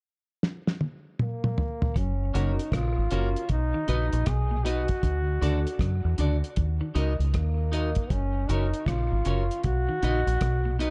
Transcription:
0.43 snare medium
0.67 snare medium
0.81 high tom medium
1.19 1.99 A#3 medium
1.19 mid tom medium
1.44 mid tom medium
1.58 floor tom medium
1.82 floor tom loud
1.96 2.32 F#1 medium
1.96 2.12 F#3 medium
1.96 2.38 C#4 medium
1.96 kick loud
1.96 closed hi-hat medium
2.34 2.57 F#1 loud
2.34 2.51 C#3 medium
2.34 2.51 A#3 medium
2.34 2.60 C#4 medium
2.34 2.51 C#4 medium
2.34 2.76 D#4 medium
2.34 2.60 F#4 medium
2.34 2.52 F#4 medium
2.34 2.60 A#4 medium
2.34 2.52 C#5 medium
2.34 closed hi-hat medium
2.59 closed hi-hat medium
2.72 2.95 A#1 medium
2.72 2.89 C#3 medium
2.72 3.50 F4 loud
2.72 kick loud
2.72 cross-stick loud
2.72 closed hi-hat medium
2.98 3.11 G#1 medium
3.10 3.34 F#1 medium
3.10 3.28 C#3 medium
3.10 3.28 A#3 medium
3.10 3.37 C#4 medium
3.10 3.28 C#4 medium
3.10 3.35 F#4 medium
3.10 3.29 F#4 medium
3.10 3.35 A#4 medium
3.10 3.29 C#5 medium
3.10 closed hi-hat medium
3.36 3.42 F#4 soft
3.36 3.42 A#4 soft
3.36 closed hi-hat soft
3.49 3.72 B1 medium
3.49 4.29 D#4 loud
3.49 kick loud
3.49 closed hi-hat medium
3.74 3.84 D#3 medium
3.88 4.11 A#1 medium
3.88 4.05 C#3 medium
3.88 4.13 D#4 medium
3.88 4.05 D#4 medium
3.88 4.05 F#4 medium
3.88 4.14 F#4 medium
3.88 4.05 B4 medium
3.88 4.14 B4 loud
3.88 4.06 D#5 medium
3.88 closed hi-hat medium
4.13 4.26 A#1 medium
4.13 closed hi-hat soft
4.26 4.86 B1 medium
4.26 4.43 B2 medium
4.26 4.68 G#4 loud
4.26 kick loud
4.26 cross-stick loud
4.26 closed hi-hat medium
4.51 4.61 A#2 medium
4.65 4.81 B2 medium
4.65 4.90 D#4 medium
4.65 4.82 D#4 medium
4.65 4.91 F#4 medium
4.65 4.82 F#4 medium
4.65 6.19 F#4 loud
4.65 4.91 B4 loud
4.65 4.82 B4 medium
4.65 4.83 D#5 medium
4.65 closed hi-hat medium
4.88 kick medium
4.88 closed hi-hat medium
5.03 5.39 D2 loud
5.03 5.20 D3 medium
5.03 kick loud
5.03 closed hi-hat medium
5.42 5.64 D2 loud
5.42 5.58 C#3 medium
5.42 5.67 D4 medium
5.42 5.59 D4 medium
5.42 5.67 F#4 medium
5.42 5.59 F#4 medium
5.42 5.68 A4 medium
5.42 5.59 A4 medium
5.42 5.59 D5 medium
5.42 closed hi-hat medium
5.67 closed hi-hat soft
5.79 6.02 F#2 medium
5.79 5.96 C#3 medium
5.79 kick loud
5.79 cross-stick loud
5.79 closed hi-hat medium
6.05 6.18 E2 medium
6.18 6.41 D2 medium
6.18 6.35 C#3 medium
6.18 6.35 D4 medium
6.18 6.36 F#4 medium
6.18 6.36 A4 medium
6.18 6.36 D5 medium
6.18 closed hi-hat medium
6.44 closed hi-hat soft
6.56 6.80 D#2 medium
6.56 kick loud
6.56 closed hi-hat medium
6.81 6.91 D#3 medium
6.95 7.18 C#2 medium
6.95 7.12 C#3 medium
6.95 7.12 D#4 medium
6.95 7.12 F#4 medium
6.95 7.12 A#4 medium
6.95 7.13 D#5 medium
6.95 closed hi-hat medium
7.19 7.33 C#2 medium
7.19 closed hi-hat soft
7.34 7.93 D#2 loud
7.34 8.13 A#3 medium
7.34 kick loud
7.34 cross-stick loud
7.34 closed hi-hat medium
7.72 7.89 D#4 medium
7.72 7.89 F#4 medium
7.72 7.89 A#4 loud
7.72 7.90 D#5 medium
7.72 closed hi-hat medium
7.95 kick medium
7.95 closed hi-hat soft
8.10 8.46 F#1 loud
8.10 8.27 F#3 medium
8.10 8.51 C#4 loud
8.10 kick loud
8.10 closed hi-hat medium
8.49 8.72 F#1 loud
8.49 8.65 C#3 medium
8.49 8.66 C#4 medium
8.49 8.89 D#4 loud
8.49 8.66 F#4 medium
8.49 8.66 A#4 medium
8.49 8.67 C#5 medium
8.49 closed hi-hat medium
8.74 closed hi-hat soft
8.86 9.10 A#1 loud
8.86 9.04 C#3 medium
8.86 9.66 F4 loud
8.86 kick loud
8.86 cross-stick loud
8.86 closed hi-hat medium
9.12 9.25 G#1 medium
9.25 9.48 F#1 medium
9.25 9.42 C#3 medium
9.25 9.42 C#4 medium
9.25 9.43 F#4 medium
9.25 9.43 A#4 medium
9.25 9.43 C#5 medium
9.25 closed hi-hat medium
9.51 closed hi-hat soft
9.64 9.87 B1 medium
9.64 10.79 F#4 loud
9.64 kick loud
9.64 closed hi-hat medium
9.89 9.98 D#3 medium
10.03 10.25 A#1 medium
10.03 10.19 C#3 medium
10.03 10.19 D#4 medium
10.03 10.19 F#4 medium
10.03 10.20 B4 loud
10.03 10.20 D#5 loud
10.03 closed hi-hat medium
10.27 10.40 A#1 loud
10.27 closed hi-hat medium
10.41 10.90 B1 medium
10.41 10.57 B2 medium
10.41 kick loud
10.41 cross-stick loud
10.41 closed hi-hat medium
10.65 10.75 A#2 medium
10.79 10.90 B2 medium
10.79 10.90 D#4 medium
10.79 10.90 F#4 medium
10.79 10.90 B4 medium
10.79 10.90 D#5 medium
10.79 closed hi-hat medium

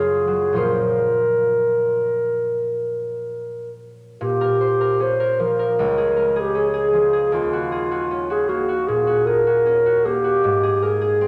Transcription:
0.00 0.62 F#2 soft
0.00 0.62 C#3 soft
0.00 0.26 F#3 soft
0.00 0.54 C#4 soft
0.00 0.55 F4 soft
0.00 0.57 G#4 soft
0.27 0.62 F#3 soft
0.53 4.20 A#2 soft
0.53 4.44 F3 soft
0.53 4.45 C#4 soft
0.53 4.46 F4 soft
0.53 4.23 C5 soft
0.58 3.73 A#4 soft
4.21 5.82 A#2 soft
4.21 5.04 G4 soft
4.41 4.79 A#4 soft
4.61 4.94 C5 soft
4.81 5.19 A#4 soft
5.00 6.53 C#4 soft
5.00 5.41 C5 medium
5.20 5.58 A#4 soft
5.39 6.92 F3 soft
5.39 6.41 A#4 soft
5.59 5.82 A#4 soft
5.79 7.37 C#2 soft
5.98 6.35 G#4 soft
6.17 6.49 A#4 soft
6.36 6.58 G4 soft
6.36 6.72 G#4 soft
6.55 8.09 C#4 soft
6.55 7.33 G#4 medium
6.74 7.12 G#4 soft
6.93 10.83 F3 soft
7.13 7.36 G#4 soft
7.32 10.46 D#2 soft
7.32 8.33 F4 soft
7.53 7.90 F#4 soft
7.72 8.05 G#4 soft
7.91 8.29 F#4 soft
8.11 9.65 C#4 soft
8.30 8.67 F#4 soft
8.30 8.50 G#4 soft
8.49 10.04 A#3 soft
8.49 8.89 F#4 soft
8.69 9.06 F#4 soft
8.88 10.47 A#2 soft
8.88 9.28 G#4 medium
9.07 9.46 F#4 soft
9.26 9.60 G#4 soft
9.26 10.07 A#4 medium
9.47 9.85 F#4 soft
9.66 10.47 C#4 soft
9.86 10.23 F#4 soft
10.05 11.28 A#3 soft
10.05 10.85 G4 medium
10.24 10.47 F#4 soft
10.44 11.28 G#2 soft
10.63 11.00 G#4 soft
10.82 11.28 G#4 soft
10.82 11.16 A#4 soft
11.01 11.28 G#4 soft
11.21 11.28 C4 soft

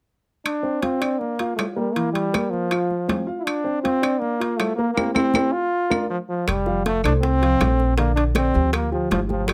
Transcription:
0.45 0.83 D4 medium
0.45 high conga soft
0.45 high timbale medium
0.45 claves medium
0.63 0.79 C4 medium
0.63 0.79 C5 medium
0.63 high conga soft
0.82 1.20 C4 medium
0.82 0.98 F4 medium
0.82 0.98 F5 medium
0.82 high conga medium
0.82 high timbale medium
0.82 low timbale medium
1.01 1.32 D4 medium
1.01 1.32 D5 medium
1.01 high conga soft
1.01 high timbale medium
1.01 claves medium
1.19 1.55 A#3 medium
1.19 high conga soft
1.39 1.70 F4 medium
1.39 1.70 F5 medium
1.39 high conga soft
1.39 high timbale medium
1.56 1.65 A3 medium
1.56 high conga soft
1.56 high timbale medium
1.56 low timbale medium
1.56 claves medium
1.75 1.95 G3 medium
1.75 1.92 A#3 medium
1.75 1.92 A#4 medium
1.75 high conga soft
1.94 2.27 E3 medium
1.94 2.12 A#3 medium
1.94 2.27 E4 medium
1.94 high conga soft
1.94 high timbale medium
2.13 2.52 G3 medium
2.13 high conga soft
2.13 high timbale medium
2.33 2.65 A#3 medium
2.33 2.64 A#4 medium
2.33 high conga medium
2.33 high timbale medium
2.33 low timbale medium
2.33 claves medium
2.50 3.27 F3 medium
2.50 high conga soft
2.71 3.02 F4 medium
2.71 3.02 F5 medium
2.71 high conga soft
2.71 high timbale medium
2.71 claves medium
2.90 high conga soft
3.08 3.24 C4 medium
3.08 3.24 C5 medium
3.08 high conga medium
3.08 high timbale medium
3.08 low timbale medium
3.26 3.58 F4 medium
3.26 3.58 F5 medium
3.39 3.46 E4 medium
3.44 3.82 D4 medium
3.44 high conga soft
3.44 high timbale medium
3.44 claves medium
3.64 3.80 C4 medium
3.64 3.80 C5 medium
3.64 high conga soft
3.82 4.20 C4 medium
3.82 3.99 F4 medium
3.82 4.00 F5 medium
3.82 high conga medium
3.82 high timbale medium
3.82 low timbale medium
4.02 4.33 D4 medium
4.02 4.33 D5 medium
4.02 high conga soft
4.02 high timbale medium
4.02 claves medium
4.19 4.58 A#3 medium
4.19 high conga soft
4.40 4.71 F4 medium
4.40 4.71 F5 medium
4.40 high conga soft
4.40 high timbale medium
4.57 4.75 A3 medium
4.57 high conga soft
4.57 high timbale medium
4.57 low timbale medium
4.57 claves medium
4.76 4.93 A#3 medium
4.76 4.94 A#3 medium
4.76 4.94 A#4 medium
4.76 high conga soft
4.94 5.13 A#3 medium
4.94 5.09 C4 loud
4.94 5.09 E4 medium
4.94 5.09 G4 medium
4.94 high conga medium
4.94 high timbale medium
4.94 claves medium
5.14 5.54 C4 medium
5.14 5.28 C4 medium
5.14 5.28 E4 medium
5.14 5.28 G4 medium
5.14 high conga medium
5.14 high timbale medium
5.14 claves medium
5.34 5.47 C4 medium
5.34 5.47 E4 medium
5.34 5.47 G4 medium
5.34 high conga medium
5.34 high timbale loud
5.34 claves medium
5.52 6.09 F4 medium
5.90 6.03 D4 medium
5.90 6.03 F4 medium
5.90 6.03 A#4 medium
5.90 high conga medium
5.90 high timbale medium
5.90 claves medium
6.10 6.18 F3 medium
6.29 6.49 F3 medium
6.47 7.00 F1 medium
6.47 6.85 G3 medium
6.47 high bongo medium
6.47 high conga soft
6.47 high timbale medium
6.47 claves medium
6.66 6.97 F3 medium
6.66 6.97 F4 medium
6.66 6.97 F5 medium
6.66 high bongo soft
6.66 high conga soft
6.85 7.03 A3 medium
6.85 high bongo medium
6.85 high conga medium
6.85 high timbale medium
6.85 low timbale medium
7.04 7.56 C2 medium
7.04 7.35 A3 medium
7.04 7.13 D4 medium
7.04 7.35 A4 medium
7.04 7.36 C5 medium
7.04 high bongo soft
7.04 high conga soft
7.04 high timbale medium
7.04 claves medium
7.22 7.94 C4 loud
7.22 high bongo medium
7.22 high conga soft
7.41 7.57 F3 medium
7.41 7.57 F4 medium
7.41 7.57 F5 medium
7.41 high conga soft
7.41 high timbale medium
7.60 8.48 A#1 medium
7.60 7.91 A3 medium
7.60 7.92 A4 medium
7.60 7.92 C5 medium
7.60 high bongo soft
7.60 low bongo medium
7.60 high conga soft
7.60 high timbale medium
7.60 low timbale medium
7.60 claves medium
7.79 high bongo soft
7.79 high conga soft
7.97 8.29 D3 medium
7.97 8.15 A#3 medium
7.97 8.29 D4 medium
7.97 8.29 D5 medium
7.97 high bongo medium
7.97 high conga soft
7.97 high timbale medium
8.16 8.24 D4 medium
8.16 high bongo soft
8.16 high conga soft
8.16 high timbale medium
8.35 8.51 D3 medium
8.35 8.71 C4 loud
8.35 8.51 D4 medium
8.35 8.51 D5 medium
8.35 high bongo medium
8.35 high conga medium
8.35 high timbale medium
8.35 low timbale medium
8.35 claves medium
8.53 9.07 D2 medium
8.53 8.85 F3 medium
8.53 8.85 F4 medium
8.53 8.85 G4 medium
8.53 high bongo soft
8.53 high conga soft
8.73 8.91 A#3 medium
8.73 high bongo medium
8.73 high conga soft
8.73 high timbale medium
8.73 claves medium
8.91 9.22 F3 medium
8.91 9.10 F3 medium
8.91 9.22 F4 medium
8.91 9.23 G4 medium
8.91 high conga soft
9.11 9.53 G1 medium
9.11 9.20 F3 medium
9.11 high bongo soft
9.11 low bongo medium
9.11 high conga medium
9.11 high timbale medium
9.11 low timbale medium
9.29 9.53 F3 medium
9.29 9.51 F3 medium
9.29 9.53 F4 medium
9.29 9.53 G4 medium
9.29 high bongo soft
9.29 high conga medium
9.48 9.53 G3 medium
9.48 high bongo medium
9.48 high conga soft
9.48 high timbale medium
9.48 claves medium

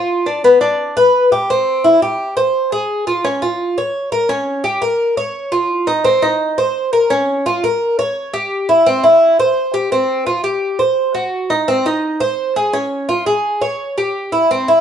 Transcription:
0.00 0.25 F4 medium
0.26 0.43 D4 medium
0.44 0.60 B3 medium
0.61 0.95 D4 medium
0.97 1.31 B4 medium
1.32 1.49 G4 medium
1.50 1.84 C4 medium
1.84 2.01 E4 medium
2.02 2.36 G4 medium
2.37 2.71 C5 medium
2.72 3.06 G#4 medium
3.07 3.24 F4 medium
3.25 3.42 C#4 medium
3.42 3.76 F4 medium
3.78 4.12 C#5 medium
4.12 4.29 A#4 medium
4.29 4.64 C#4 medium
4.64 4.81 G4 medium
4.82 5.16 A#4 medium
5.17 5.51 C#5 medium
5.52 5.86 F4 medium
5.87 6.04 D#4 medium
6.04 6.22 C4 medium
6.22 6.57 D#4 medium
6.58 6.92 C5 medium
6.93 7.10 A#4 medium
7.10 7.44 C#4 medium
7.46 7.63 F4 medium
7.64 7.98 A#4 medium
7.99 8.33 C#5 medium
8.34 8.68 G4 medium
8.69 8.86 E4 medium
8.86 9.03 C4 medium
9.04 9.38 E4 medium
9.40 9.73 C5 medium
9.74 9.91 G4 medium
9.92 10.26 C4 medium
10.27 10.43 F4 medium
10.44 10.78 G4 medium
10.79 11.14 C5 medium
11.14 11.49 F#4 medium
11.50 11.67 D#4 medium
11.68 11.85 C4 medium
11.86 12.20 D#4 medium
12.20 12.55 C5 medium
12.56 12.73 G#4 medium
12.73 13.08 C#4 medium
13.09 13.26 F4 medium
13.26 13.61 G#4 medium
13.61 13.96 C#5 medium
13.98 14.31 G4 medium
14.32 14.49 E4 medium
14.51 14.67 C4 medium
14.68 14.81 E4 medium

